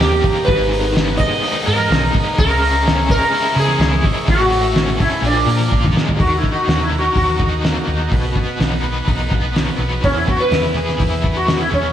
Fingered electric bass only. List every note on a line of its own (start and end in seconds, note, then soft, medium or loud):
0.00 0.20 D#2 loud
0.48 1.28 G#1 loud
1.67 1.87 G#2 loud
1.90 2.10 B1 loud
2.39 3.18 C#2 loud
3.56 3.77 C#3 loud
3.79 4.00 C#2 loud
4.28 5.08 A1 loud
5.22 5.43 A#1 loud
5.46 5.67 A#2 loud
5.72 5.92 A#1 loud
6.20 6.40 D#2 loud
6.67 7.08 D#2 medium
7.16 7.77 D#2 loud
7.88 8.08 D#2 medium
8.12 8.32 B1 loud
8.59 9.00 B1 medium
9.08 9.69 B1 loud
9.78 9.99 B1 medium
10.04 10.24 E2 loud
10.51 10.92 E2 medium
11.00 11.61 E2 loud
11.72 11.93 E2 medium